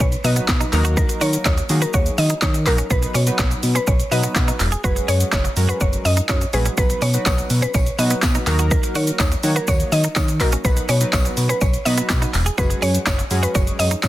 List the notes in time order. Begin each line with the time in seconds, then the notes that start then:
Already playing: impact
0.00 B1 C#4 C#5, kick, shaker
0.12 closed hi-hat, shaker
0.24 B2 F#3 B3 D#4 F#4 B4 D#5, muted clean electric guitar stroke, open hi-hat, shaker
0.36 B3, closed hi-hat, shaker
0.48 B2, kick, snare, clap, shaker
0.61 D#4, closed hi-hat, shaker
0.73 D#2 F#3 A#3 D#4 F#4 A#4, muted clean electric guitar stroke, clap, open hi-hat, shaker
0.85 F#4, closed hi-hat, shaker
0.97 D#4 A#4, kick, shaker
1.09 muted clean electric guitar stroke, closed hi-hat, shaker
1.21 D#3 F#4 C#5, open hi-hat, shaker
1.33 closed hi-hat, shaker
1.45 D#2 D#4 C#5, kick, snare, clap, shaker
1.58 muted clean electric guitar stroke, closed hi-hat, shaker
1.69 D#3 F#3 A#3 D#4 F#4 G#4, open hi-hat, shaker
1.82 F#4 A#4, closed hi-hat, shaker
1.94 D#2 F#4 C#5, kick, shaker
2.06 closed hi-hat, shaker
2.18 D#3 D#5, muted clean electric guitar stroke, open hi-hat, shaker
2.30 D#4, closed hi-hat, shaker
2.42 D#3 D#4 C#5, kick, snare, clap, shaker
2.54 muted clean electric guitar stroke, closed hi-hat, shaker
2.66 A#1 F#3 A#3 D#4 F#4 A#4, clap, open hi-hat, shaker
2.78 C#4, closed hi-hat, shaker
2.90 B1 F#3 B3 D#4 F#4 B4, kick, shaker
3.02 muted clean electric guitar stroke, closed hi-hat, shaker
3.14 B2 C#4 C#5, open hi-hat, shaker
3.27 F#3 B3 D#4 F#4 B4, closed hi-hat, shaker
3.39 B1 B3 C#5, kick, snare, clap, shaker
3.51 muted clean electric guitar stroke, closed hi-hat, shaker
3.63 B2, open hi-hat, shaker
3.75 C#4 B4, closed hi-hat, shaker
3.87 B1 C#4 C#5, kick, shaker
4.00 closed hi-hat, shaker
4.11 B2 F#3 B3 D#4 F#4 B4 D#5, muted clean electric guitar stroke, open hi-hat, shaker
4.23 B3, closed hi-hat, shaker
4.36 B2, kick, snare, clap, shaker
4.48 D#4, closed hi-hat, shaker
4.60 E1, muted clean electric guitar stroke, clap, open hi-hat, shaker
4.72 G#4, closed hi-hat, shaker
4.84 F#1 F#3 G#3 C#4 F#4 G#4 B4, kick, shaker
4.96 muted clean electric guitar stroke, closed hi-hat, shaker
5.08 F#2 G#4 C#5, open hi-hat, shaker
5.20 closed hi-hat, shaker
5.32 F#1 D#4 C#5, kick, snare, clap, shaker
5.44 muted clean electric guitar stroke, closed hi-hat, shaker
5.56 F#2 F#3 G#3 C#4 F#4 A#4, open hi-hat, shaker
5.69 F#4 B4, closed hi-hat, shaker
5.81 F#1 F#4 C#5, kick, shaker
5.93 closed hi-hat, shaker
6.05 F#2 D#5, muted clean electric guitar stroke, open hi-hat, shaker
6.17 D#4, closed hi-hat, shaker
6.29 F#2 D#4 C#5, kick, snare, clap, shaker
6.41 muted clean electric guitar stroke, closed hi-hat, shaker
6.53 A#1 F#3 G#3 C#4 F#4 G#4 B4, open hi-hat, shaker
6.65 C#4, closed hi-hat, shaker
6.77 B1 F#3 B3 D#4 F#4 B4, kick, tambourine, shaker
6.90 muted clean electric guitar stroke, closed hi-hat, shaker
7.02 B2 C#4 C#5, open hi-hat, tambourine, shaker
7.14 F#3 B3 D#4 F#4 B4, closed hi-hat, shaker
7.26 B1 B3 C#5, kick, snare, clap, tambourine, shaker
7.38 muted clean electric guitar stroke, closed hi-hat, shaker
7.50 B2, open hi-hat, tambourine, shaker
7.62 C#4 B4, closed hi-hat, shaker
7.74 B1 C#4 C#5, kick, tambourine, shaker
7.87 closed hi-hat, shaker
7.98 B2 F#3 B3 D#4 F#4 B4 D#5, muted clean electric guitar stroke, open hi-hat, tambourine, shaker
8.10 B3, closed hi-hat, shaker
8.22 B2, kick, snare, clap, tambourine, shaker
8.35 D#4, closed hi-hat, shaker
8.47 D#2 F#3 A#3 D#4 F#4 A#4, muted clean electric guitar stroke, clap, open hi-hat, tambourine, shaker
8.59 F#4, closed hi-hat, shaker
8.71 D#4 A#4, kick, shaker
8.83 muted clean electric guitar stroke, closed hi-hat, shaker
8.95 D#3 F#4 C#5, open hi-hat, tambourine, shaker
9.07 closed hi-hat, shaker
9.19 D#2 D#4 C#5, kick, snare, clap, tambourine, shaker
9.32 muted clean electric guitar stroke, closed hi-hat, shaker
9.43 D#3 F#3 A#3 D#4 F#4 C#5, open hi-hat, tambourine, shaker
9.56 F#4 A#4, closed hi-hat, shaker
9.68 D#2 F#4 C#5, kick, tambourine, shaker
9.80 closed hi-hat, shaker
9.92 D#3 D#5, muted clean electric guitar stroke, open hi-hat, tambourine, shaker
10.04 D#4, closed hi-hat, shaker
10.16 D#3 D#4 C#5, kick, snare, clap, tambourine, shaker
10.28 muted clean electric guitar stroke, closed hi-hat, shaker
10.40 A#1 F#3 A#3 D#4 F#4 A#4, clap, open hi-hat, tambourine, shaker
10.52 C#4, closed hi-hat, shaker
10.64 B1 F#3 B3 D#4 F#4 B4, kick, tambourine, shaker
10.77 muted clean electric guitar stroke, closed hi-hat, shaker
10.89 B2 C#4 C#5, open hi-hat, tambourine, shaker
11.01 F#3 B3 D#4 F#4 B4, closed hi-hat, shaker
11.13 B1 B3 C#5, kick, snare, clap, tambourine, shaker
11.25 muted clean electric guitar stroke, closed hi-hat, shaker
11.37 B2, open hi-hat, tambourine, shaker
11.49 C#4 B4, closed hi-hat, shaker
11.61 B1 C#4 C#5, kick, tambourine, shaker
11.74 closed hi-hat, shaker
11.85 B2 F#3 B3 D#4 F#4 B4 D#5, muted clean electric guitar stroke, open hi-hat, tambourine, shaker
11.97 B3, closed hi-hat, shaker
12.10 B2, kick, snare, clap, tambourine, shaker
12.22 D#4, closed hi-hat, shaker
12.34 E1, muted clean electric guitar stroke, clap, open hi-hat, tambourine, shaker
12.46 G#4, closed hi-hat, shaker
12.58 F#1 F#3 G#3 C#4 F#4 G#4 B4, kick, tambourine, shaker
12.70 muted clean electric guitar stroke, closed hi-hat, shaker
12.82 F#2 G#4 C#5, open hi-hat, shaker
12.95 closed hi-hat, shaker
13.06 F#1 D#4 C#5, kick, snare, clap, tambourine, shaker
13.19 muted clean electric guitar stroke, closed hi-hat, shaker
13.31 F#2 F#3 G#3 C#4 F#4 G#4, open hi-hat, tambourine, shaker
13.43 F#4 B4, closed hi-hat, shaker
13.55 F#1 F#4 C#5, kick, tambourine, shaker
13.67 closed hi-hat, shaker
13.79 F#2 D#5, muted clean electric guitar stroke, open hi-hat, tambourine, shaker
13.91 D#4, closed hi-hat, shaker
14.03 F#2 D#4 C#5, kick, snare, clap, tambourine, shaker